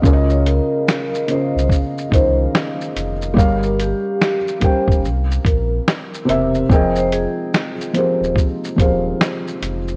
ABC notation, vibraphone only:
X:1
M:4/4
L:1/16
Q:"Swing 16ths" 1/4=72
K:Dblyd
V:1 name="Vibraphone"
z d B4 c2 z2 c z4 z | z B G4 c2 z2 B z4 z | z c A4 c2 z2 c z4 z |]